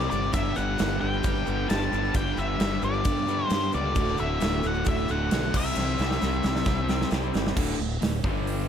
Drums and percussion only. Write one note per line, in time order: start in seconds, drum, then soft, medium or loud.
0.01 shaker soft
0.11 shaker medium
0.22 shaker soft
0.33 kick loud
0.33 crash medium
0.33 shaker loud
0.56 shaker medium
0.78 snare loud
0.78 crash medium
0.78 shaker loud
1.13 shaker soft
1.23 kick loud
1.23 crash medium
1.23 shaker loud
1.35 shaker soft
1.46 shaker medium
1.70 snare loud
1.70 crash medium
1.70 shaker medium
1.82 shaker soft
1.93 shaker medium
2.04 shaker soft
2.14 kick loud
2.14 crash medium
2.14 shaker loud
2.27 shaker soft
2.37 shaker medium
2.60 snare loud
2.60 crash medium
2.60 shaker loud
2.82 shaker medium
2.93 shaker soft
3.05 kick loud
3.05 crash medium
3.05 shaker loud
3.17 shaker soft
3.28 shaker medium
3.50 snare loud
3.50 crash medium
3.50 shaker medium
3.62 shaker soft
3.72 shaker medium
3.95 kick loud
3.95 crash medium
3.95 shaker loud
4.08 shaker soft
4.18 shaker medium
4.40 snare loud
4.40 crash medium
4.40 shaker loud
4.63 shaker medium
4.74 shaker soft
4.85 kick loud
4.85 crash medium
4.85 shaker medium
4.97 shaker soft
5.08 shaker medium
5.31 snare loud
5.31 crash medium
5.31 shaker medium
5.43 shaker soft
5.54 kick loud
5.54 crash loud
5.54 shaker medium
5.75 snare medium
5.75 shaker loud
5.98 snare medium
5.98 shaker medium
6.10 snare medium
6.10 shaker soft
6.21 snare medium
6.21 shaker medium
6.33 shaker soft
6.43 snare medium
6.43 shaker medium
6.55 snare medium
6.55 shaker soft
6.65 kick loud
6.65 snare medium
6.65 shaker loud
6.77 shaker soft
6.89 snare medium
6.89 shaker medium
7.01 snare medium
7.11 snare loud
7.11 shaker medium
7.23 shaker soft
7.34 snare loud
7.34 shaker medium
7.45 snare loud
7.45 shaker soft
7.57 kick loud
7.57 crash loud
8.02 snare loud
8.02 open hi-hat medium
8.24 kick loud
8.47 open hi-hat medium